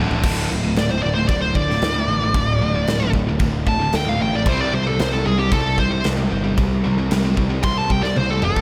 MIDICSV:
0, 0, Header, 1, 5, 480
1, 0, Start_track
1, 0, Tempo, 528634
1, 219, Time_signature, 4, 2, 24, 8
1, 7819, End_track
2, 0, Start_track
2, 0, Title_t, "Lead electric guitar"
2, 0, Program_c, 0, 29
2, 713, Note_on_c, 0, 74, 88
2, 822, Note_off_c, 0, 74, 0
2, 822, Note_on_c, 0, 72, 73
2, 928, Note_off_c, 0, 72, 0
2, 932, Note_on_c, 0, 74, 78
2, 1036, Note_off_c, 0, 74, 0
2, 1040, Note_on_c, 0, 72, 80
2, 1163, Note_off_c, 0, 72, 0
2, 1166, Note_on_c, 0, 74, 91
2, 1283, Note_off_c, 0, 74, 0
2, 1286, Note_on_c, 0, 72, 87
2, 1415, Note_off_c, 0, 72, 0
2, 1415, Note_on_c, 0, 74, 98
2, 2819, Note_off_c, 0, 74, 0
2, 3344, Note_on_c, 0, 81, 92
2, 3573, Note_off_c, 0, 81, 0
2, 3590, Note_on_c, 0, 79, 91
2, 3711, Note_off_c, 0, 79, 0
2, 3711, Note_on_c, 0, 77, 99
2, 3821, Note_off_c, 0, 77, 0
2, 3836, Note_on_c, 0, 79, 98
2, 3943, Note_off_c, 0, 79, 0
2, 3954, Note_on_c, 0, 74, 80
2, 4075, Note_off_c, 0, 74, 0
2, 4075, Note_on_c, 0, 72, 103
2, 4182, Note_off_c, 0, 72, 0
2, 4182, Note_on_c, 0, 74, 92
2, 4296, Note_off_c, 0, 74, 0
2, 4312, Note_on_c, 0, 72, 98
2, 4419, Note_off_c, 0, 72, 0
2, 4419, Note_on_c, 0, 69, 76
2, 4537, Note_off_c, 0, 69, 0
2, 4537, Note_on_c, 0, 72, 93
2, 4648, Note_off_c, 0, 72, 0
2, 4648, Note_on_c, 0, 69, 83
2, 4769, Note_off_c, 0, 69, 0
2, 4783, Note_on_c, 0, 68, 83
2, 4892, Note_off_c, 0, 68, 0
2, 4896, Note_on_c, 0, 67, 84
2, 5011, Note_off_c, 0, 67, 0
2, 5011, Note_on_c, 0, 69, 89
2, 5247, Note_off_c, 0, 69, 0
2, 5257, Note_on_c, 0, 72, 87
2, 5490, Note_off_c, 0, 72, 0
2, 6937, Note_on_c, 0, 84, 104
2, 7061, Note_off_c, 0, 84, 0
2, 7061, Note_on_c, 0, 81, 102
2, 7186, Note_off_c, 0, 81, 0
2, 7186, Note_on_c, 0, 79, 91
2, 7289, Note_on_c, 0, 74, 79
2, 7298, Note_off_c, 0, 79, 0
2, 7420, Note_off_c, 0, 74, 0
2, 7420, Note_on_c, 0, 72, 97
2, 7540, Note_off_c, 0, 72, 0
2, 7540, Note_on_c, 0, 69, 89
2, 7655, Note_off_c, 0, 69, 0
2, 7671, Note_on_c, 0, 69, 99
2, 7819, Note_off_c, 0, 69, 0
2, 7819, End_track
3, 0, Start_track
3, 0, Title_t, "Distorted electric guitar"
3, 0, Program_c, 1, 30
3, 0, Note_on_c, 1, 38, 89
3, 0, Note_on_c, 1, 45, 92
3, 0, Note_on_c, 1, 50, 96
3, 196, Note_off_c, 1, 38, 0
3, 204, Note_off_c, 1, 45, 0
3, 207, Note_on_c, 1, 38, 102
3, 211, Note_off_c, 1, 50, 0
3, 214, Note_on_c, 1, 45, 98
3, 221, Note_on_c, 1, 50, 96
3, 438, Note_off_c, 1, 38, 0
3, 442, Note_off_c, 1, 45, 0
3, 445, Note_off_c, 1, 50, 0
3, 459, Note_on_c, 1, 45, 86
3, 460, Note_on_c, 1, 38, 74
3, 567, Note_off_c, 1, 45, 0
3, 570, Note_off_c, 1, 38, 0
3, 577, Note_on_c, 1, 45, 84
3, 581, Note_on_c, 1, 38, 61
3, 685, Note_off_c, 1, 38, 0
3, 691, Note_off_c, 1, 45, 0
3, 696, Note_on_c, 1, 38, 70
3, 702, Note_on_c, 1, 45, 82
3, 800, Note_off_c, 1, 45, 0
3, 803, Note_off_c, 1, 38, 0
3, 811, Note_on_c, 1, 45, 75
3, 814, Note_on_c, 1, 38, 66
3, 916, Note_off_c, 1, 45, 0
3, 923, Note_off_c, 1, 38, 0
3, 927, Note_on_c, 1, 45, 82
3, 934, Note_on_c, 1, 38, 64
3, 1033, Note_off_c, 1, 45, 0
3, 1041, Note_off_c, 1, 38, 0
3, 1044, Note_on_c, 1, 45, 66
3, 1051, Note_on_c, 1, 38, 57
3, 1155, Note_off_c, 1, 38, 0
3, 1158, Note_off_c, 1, 45, 0
3, 1166, Note_on_c, 1, 38, 77
3, 1169, Note_on_c, 1, 45, 83
3, 1387, Note_off_c, 1, 38, 0
3, 1389, Note_off_c, 1, 45, 0
3, 1406, Note_on_c, 1, 45, 78
3, 1407, Note_on_c, 1, 38, 70
3, 1515, Note_off_c, 1, 45, 0
3, 1517, Note_off_c, 1, 38, 0
3, 1526, Note_on_c, 1, 45, 75
3, 1528, Note_on_c, 1, 38, 62
3, 1639, Note_off_c, 1, 38, 0
3, 1643, Note_off_c, 1, 45, 0
3, 1650, Note_on_c, 1, 38, 80
3, 1654, Note_on_c, 1, 45, 73
3, 1754, Note_off_c, 1, 45, 0
3, 1758, Note_off_c, 1, 38, 0
3, 1765, Note_on_c, 1, 45, 72
3, 1768, Note_on_c, 1, 38, 61
3, 1880, Note_off_c, 1, 45, 0
3, 1884, Note_off_c, 1, 38, 0
3, 1891, Note_on_c, 1, 45, 74
3, 1895, Note_on_c, 1, 38, 61
3, 1996, Note_off_c, 1, 45, 0
3, 2004, Note_off_c, 1, 38, 0
3, 2007, Note_on_c, 1, 45, 71
3, 2014, Note_on_c, 1, 38, 52
3, 2119, Note_off_c, 1, 38, 0
3, 2122, Note_off_c, 1, 45, 0
3, 2130, Note_on_c, 1, 38, 91
3, 2133, Note_on_c, 1, 45, 102
3, 2349, Note_off_c, 1, 38, 0
3, 2351, Note_off_c, 1, 45, 0
3, 2379, Note_on_c, 1, 45, 86
3, 2380, Note_on_c, 1, 38, 72
3, 2490, Note_off_c, 1, 45, 0
3, 2491, Note_off_c, 1, 38, 0
3, 2501, Note_on_c, 1, 45, 78
3, 2502, Note_on_c, 1, 38, 67
3, 2610, Note_off_c, 1, 38, 0
3, 2611, Note_off_c, 1, 45, 0
3, 2620, Note_on_c, 1, 38, 67
3, 2622, Note_on_c, 1, 45, 71
3, 2732, Note_off_c, 1, 45, 0
3, 2734, Note_off_c, 1, 38, 0
3, 2743, Note_on_c, 1, 45, 83
3, 2745, Note_on_c, 1, 38, 67
3, 2840, Note_off_c, 1, 45, 0
3, 2849, Note_off_c, 1, 38, 0
3, 2851, Note_on_c, 1, 45, 88
3, 2860, Note_on_c, 1, 38, 61
3, 2974, Note_off_c, 1, 45, 0
3, 2978, Note_off_c, 1, 38, 0
3, 2985, Note_on_c, 1, 45, 72
3, 2991, Note_on_c, 1, 38, 51
3, 3084, Note_off_c, 1, 38, 0
3, 3091, Note_off_c, 1, 45, 0
3, 3095, Note_on_c, 1, 38, 80
3, 3102, Note_on_c, 1, 45, 74
3, 3312, Note_off_c, 1, 38, 0
3, 3315, Note_off_c, 1, 45, 0
3, 3336, Note_on_c, 1, 45, 86
3, 3340, Note_on_c, 1, 38, 62
3, 3448, Note_off_c, 1, 45, 0
3, 3454, Note_off_c, 1, 38, 0
3, 3459, Note_on_c, 1, 45, 92
3, 3465, Note_on_c, 1, 38, 68
3, 3574, Note_off_c, 1, 38, 0
3, 3575, Note_off_c, 1, 45, 0
3, 3585, Note_on_c, 1, 38, 72
3, 3586, Note_on_c, 1, 45, 90
3, 3689, Note_off_c, 1, 45, 0
3, 3692, Note_off_c, 1, 38, 0
3, 3700, Note_on_c, 1, 45, 87
3, 3703, Note_on_c, 1, 38, 63
3, 3812, Note_off_c, 1, 45, 0
3, 3817, Note_off_c, 1, 38, 0
3, 3823, Note_on_c, 1, 45, 73
3, 3828, Note_on_c, 1, 38, 55
3, 3927, Note_off_c, 1, 45, 0
3, 3931, Note_off_c, 1, 38, 0
3, 3938, Note_on_c, 1, 45, 72
3, 3942, Note_on_c, 1, 38, 72
3, 4047, Note_off_c, 1, 38, 0
3, 4050, Note_on_c, 1, 48, 106
3, 4055, Note_off_c, 1, 45, 0
3, 4058, Note_on_c, 1, 55, 111
3, 4064, Note_on_c, 1, 60, 114
3, 4279, Note_off_c, 1, 48, 0
3, 4283, Note_off_c, 1, 55, 0
3, 4286, Note_off_c, 1, 60, 0
3, 4300, Note_on_c, 1, 55, 95
3, 4307, Note_on_c, 1, 48, 81
3, 4406, Note_off_c, 1, 55, 0
3, 4408, Note_off_c, 1, 48, 0
3, 4417, Note_on_c, 1, 55, 75
3, 4419, Note_on_c, 1, 48, 69
3, 4528, Note_off_c, 1, 48, 0
3, 4528, Note_off_c, 1, 55, 0
3, 4539, Note_on_c, 1, 48, 75
3, 4539, Note_on_c, 1, 55, 79
3, 4645, Note_off_c, 1, 55, 0
3, 4648, Note_off_c, 1, 48, 0
3, 4656, Note_on_c, 1, 55, 79
3, 4659, Note_on_c, 1, 48, 71
3, 4760, Note_off_c, 1, 55, 0
3, 4764, Note_off_c, 1, 48, 0
3, 4771, Note_on_c, 1, 55, 83
3, 4775, Note_on_c, 1, 48, 62
3, 4880, Note_off_c, 1, 48, 0
3, 4881, Note_off_c, 1, 55, 0
3, 4890, Note_on_c, 1, 48, 65
3, 4892, Note_on_c, 1, 55, 78
3, 4996, Note_off_c, 1, 48, 0
3, 5000, Note_off_c, 1, 55, 0
3, 5006, Note_on_c, 1, 48, 79
3, 5010, Note_on_c, 1, 55, 80
3, 5228, Note_off_c, 1, 48, 0
3, 5230, Note_off_c, 1, 55, 0
3, 5248, Note_on_c, 1, 55, 68
3, 5250, Note_on_c, 1, 48, 70
3, 5351, Note_off_c, 1, 55, 0
3, 5357, Note_off_c, 1, 48, 0
3, 5362, Note_on_c, 1, 55, 90
3, 5367, Note_on_c, 1, 48, 77
3, 5472, Note_off_c, 1, 48, 0
3, 5475, Note_off_c, 1, 55, 0
3, 5483, Note_on_c, 1, 48, 85
3, 5486, Note_on_c, 1, 55, 88
3, 5589, Note_off_c, 1, 55, 0
3, 5594, Note_off_c, 1, 48, 0
3, 5600, Note_on_c, 1, 55, 74
3, 5605, Note_on_c, 1, 48, 57
3, 5701, Note_off_c, 1, 55, 0
3, 5709, Note_off_c, 1, 48, 0
3, 5712, Note_on_c, 1, 55, 75
3, 5720, Note_on_c, 1, 48, 65
3, 5835, Note_off_c, 1, 55, 0
3, 5836, Note_off_c, 1, 48, 0
3, 5845, Note_on_c, 1, 55, 78
3, 5847, Note_on_c, 1, 48, 61
3, 5955, Note_off_c, 1, 48, 0
3, 5961, Note_off_c, 1, 55, 0
3, 5966, Note_on_c, 1, 48, 80
3, 5972, Note_on_c, 1, 55, 86
3, 6188, Note_off_c, 1, 48, 0
3, 6191, Note_off_c, 1, 55, 0
3, 6209, Note_on_c, 1, 55, 77
3, 6212, Note_on_c, 1, 48, 77
3, 6327, Note_off_c, 1, 55, 0
3, 6328, Note_off_c, 1, 48, 0
3, 6338, Note_on_c, 1, 55, 87
3, 6339, Note_on_c, 1, 48, 60
3, 6449, Note_off_c, 1, 48, 0
3, 6452, Note_off_c, 1, 55, 0
3, 6460, Note_on_c, 1, 48, 70
3, 6462, Note_on_c, 1, 55, 82
3, 6566, Note_off_c, 1, 48, 0
3, 6568, Note_off_c, 1, 55, 0
3, 6577, Note_on_c, 1, 48, 69
3, 6579, Note_on_c, 1, 55, 80
3, 6680, Note_off_c, 1, 55, 0
3, 6683, Note_off_c, 1, 48, 0
3, 6691, Note_on_c, 1, 55, 76
3, 6694, Note_on_c, 1, 48, 64
3, 6793, Note_off_c, 1, 55, 0
3, 6796, Note_off_c, 1, 48, 0
3, 6804, Note_on_c, 1, 55, 70
3, 6807, Note_on_c, 1, 48, 55
3, 6921, Note_off_c, 1, 48, 0
3, 6922, Note_off_c, 1, 55, 0
3, 6932, Note_on_c, 1, 48, 80
3, 6932, Note_on_c, 1, 55, 86
3, 7151, Note_off_c, 1, 48, 0
3, 7151, Note_off_c, 1, 55, 0
3, 7168, Note_on_c, 1, 55, 73
3, 7173, Note_on_c, 1, 48, 60
3, 7275, Note_off_c, 1, 55, 0
3, 7283, Note_off_c, 1, 48, 0
3, 7286, Note_on_c, 1, 55, 80
3, 7294, Note_on_c, 1, 48, 79
3, 7399, Note_off_c, 1, 48, 0
3, 7402, Note_off_c, 1, 55, 0
3, 7410, Note_on_c, 1, 48, 90
3, 7413, Note_on_c, 1, 55, 85
3, 7523, Note_off_c, 1, 55, 0
3, 7524, Note_off_c, 1, 48, 0
3, 7534, Note_on_c, 1, 55, 65
3, 7535, Note_on_c, 1, 48, 64
3, 7642, Note_off_c, 1, 55, 0
3, 7646, Note_off_c, 1, 48, 0
3, 7653, Note_on_c, 1, 55, 75
3, 7657, Note_on_c, 1, 48, 57
3, 7769, Note_off_c, 1, 55, 0
3, 7774, Note_off_c, 1, 48, 0
3, 7780, Note_on_c, 1, 55, 76
3, 7785, Note_on_c, 1, 48, 53
3, 7819, Note_off_c, 1, 48, 0
3, 7819, Note_off_c, 1, 55, 0
3, 7819, End_track
4, 0, Start_track
4, 0, Title_t, "Picked electric bass"
4, 0, Program_c, 2, 34
4, 0, Note_on_c, 2, 26, 99
4, 213, Note_off_c, 2, 26, 0
4, 217, Note_on_c, 2, 26, 99
4, 439, Note_off_c, 2, 26, 0
4, 460, Note_on_c, 2, 26, 83
4, 680, Note_off_c, 2, 26, 0
4, 700, Note_on_c, 2, 26, 94
4, 920, Note_off_c, 2, 26, 0
4, 944, Note_on_c, 2, 26, 97
4, 1162, Note_off_c, 2, 26, 0
4, 1173, Note_on_c, 2, 26, 94
4, 1618, Note_off_c, 2, 26, 0
4, 1653, Note_on_c, 2, 38, 87
4, 1876, Note_off_c, 2, 38, 0
4, 1890, Note_on_c, 2, 33, 82
4, 2114, Note_off_c, 2, 33, 0
4, 2134, Note_on_c, 2, 26, 105
4, 2356, Note_off_c, 2, 26, 0
4, 2371, Note_on_c, 2, 26, 87
4, 2595, Note_off_c, 2, 26, 0
4, 2614, Note_on_c, 2, 26, 89
4, 2837, Note_off_c, 2, 26, 0
4, 2850, Note_on_c, 2, 26, 88
4, 3074, Note_off_c, 2, 26, 0
4, 3090, Note_on_c, 2, 26, 97
4, 3537, Note_off_c, 2, 26, 0
4, 3573, Note_on_c, 2, 38, 87
4, 3796, Note_off_c, 2, 38, 0
4, 3820, Note_on_c, 2, 33, 89
4, 4040, Note_off_c, 2, 33, 0
4, 4051, Note_on_c, 2, 36, 101
4, 4275, Note_off_c, 2, 36, 0
4, 4293, Note_on_c, 2, 36, 93
4, 4517, Note_off_c, 2, 36, 0
4, 4541, Note_on_c, 2, 36, 96
4, 4761, Note_off_c, 2, 36, 0
4, 4776, Note_on_c, 2, 36, 82
4, 4998, Note_off_c, 2, 36, 0
4, 5016, Note_on_c, 2, 36, 94
4, 5461, Note_off_c, 2, 36, 0
4, 5503, Note_on_c, 2, 36, 77
4, 5722, Note_off_c, 2, 36, 0
4, 5734, Note_on_c, 2, 31, 86
4, 5957, Note_off_c, 2, 31, 0
4, 5973, Note_on_c, 2, 36, 95
4, 6197, Note_off_c, 2, 36, 0
4, 6219, Note_on_c, 2, 36, 95
4, 6440, Note_off_c, 2, 36, 0
4, 6462, Note_on_c, 2, 36, 101
4, 6682, Note_off_c, 2, 36, 0
4, 6695, Note_on_c, 2, 36, 86
4, 6918, Note_off_c, 2, 36, 0
4, 6938, Note_on_c, 2, 36, 89
4, 7382, Note_off_c, 2, 36, 0
4, 7425, Note_on_c, 2, 36, 87
4, 7643, Note_off_c, 2, 36, 0
4, 7669, Note_on_c, 2, 31, 77
4, 7819, Note_off_c, 2, 31, 0
4, 7819, End_track
5, 0, Start_track
5, 0, Title_t, "Drums"
5, 100, Note_on_c, 9, 43, 95
5, 191, Note_off_c, 9, 43, 0
5, 213, Note_on_c, 9, 49, 111
5, 213, Note_on_c, 9, 57, 60
5, 215, Note_on_c, 9, 36, 113
5, 303, Note_off_c, 9, 49, 0
5, 303, Note_off_c, 9, 57, 0
5, 305, Note_off_c, 9, 36, 0
5, 460, Note_on_c, 9, 38, 32
5, 551, Note_off_c, 9, 38, 0
5, 693, Note_on_c, 9, 57, 56
5, 702, Note_on_c, 9, 38, 104
5, 784, Note_off_c, 9, 57, 0
5, 793, Note_off_c, 9, 38, 0
5, 1169, Note_on_c, 9, 36, 100
5, 1169, Note_on_c, 9, 57, 57
5, 1260, Note_off_c, 9, 36, 0
5, 1260, Note_off_c, 9, 57, 0
5, 1409, Note_on_c, 9, 36, 74
5, 1500, Note_off_c, 9, 36, 0
5, 1544, Note_on_c, 9, 38, 38
5, 1635, Note_off_c, 9, 38, 0
5, 1650, Note_on_c, 9, 57, 51
5, 1659, Note_on_c, 9, 38, 101
5, 1741, Note_off_c, 9, 57, 0
5, 1750, Note_off_c, 9, 38, 0
5, 2129, Note_on_c, 9, 36, 118
5, 2130, Note_on_c, 9, 57, 59
5, 2220, Note_off_c, 9, 36, 0
5, 2220, Note_off_c, 9, 57, 0
5, 2611, Note_on_c, 9, 57, 66
5, 2620, Note_on_c, 9, 38, 116
5, 2701, Note_off_c, 9, 57, 0
5, 2710, Note_off_c, 9, 38, 0
5, 2846, Note_on_c, 9, 36, 84
5, 2937, Note_off_c, 9, 36, 0
5, 3082, Note_on_c, 9, 57, 57
5, 3087, Note_on_c, 9, 36, 107
5, 3173, Note_off_c, 9, 57, 0
5, 3178, Note_off_c, 9, 36, 0
5, 3329, Note_on_c, 9, 36, 77
5, 3420, Note_off_c, 9, 36, 0
5, 3565, Note_on_c, 9, 57, 59
5, 3574, Note_on_c, 9, 38, 91
5, 3656, Note_off_c, 9, 57, 0
5, 3665, Note_off_c, 9, 38, 0
5, 4049, Note_on_c, 9, 36, 116
5, 4053, Note_on_c, 9, 57, 66
5, 4140, Note_off_c, 9, 36, 0
5, 4144, Note_off_c, 9, 57, 0
5, 4534, Note_on_c, 9, 57, 60
5, 4543, Note_on_c, 9, 38, 116
5, 4625, Note_off_c, 9, 57, 0
5, 4634, Note_off_c, 9, 38, 0
5, 5010, Note_on_c, 9, 36, 116
5, 5015, Note_on_c, 9, 57, 54
5, 5101, Note_off_c, 9, 36, 0
5, 5105, Note_off_c, 9, 57, 0
5, 5248, Note_on_c, 9, 36, 79
5, 5339, Note_off_c, 9, 36, 0
5, 5485, Note_on_c, 9, 57, 56
5, 5494, Note_on_c, 9, 38, 100
5, 5576, Note_off_c, 9, 57, 0
5, 5585, Note_off_c, 9, 38, 0
5, 5972, Note_on_c, 9, 36, 115
5, 5975, Note_on_c, 9, 57, 59
5, 6063, Note_off_c, 9, 36, 0
5, 6066, Note_off_c, 9, 57, 0
5, 6455, Note_on_c, 9, 57, 65
5, 6464, Note_on_c, 9, 38, 119
5, 6546, Note_off_c, 9, 57, 0
5, 6555, Note_off_c, 9, 38, 0
5, 6694, Note_on_c, 9, 36, 73
5, 6785, Note_off_c, 9, 36, 0
5, 6926, Note_on_c, 9, 57, 68
5, 6934, Note_on_c, 9, 36, 106
5, 7017, Note_off_c, 9, 57, 0
5, 7025, Note_off_c, 9, 36, 0
5, 7174, Note_on_c, 9, 36, 81
5, 7265, Note_off_c, 9, 36, 0
5, 7300, Note_on_c, 9, 38, 35
5, 7391, Note_off_c, 9, 38, 0
5, 7413, Note_on_c, 9, 48, 63
5, 7504, Note_off_c, 9, 48, 0
5, 7647, Note_on_c, 9, 45, 98
5, 7738, Note_off_c, 9, 45, 0
5, 7776, Note_on_c, 9, 36, 91
5, 7819, Note_off_c, 9, 36, 0
5, 7819, End_track
0, 0, End_of_file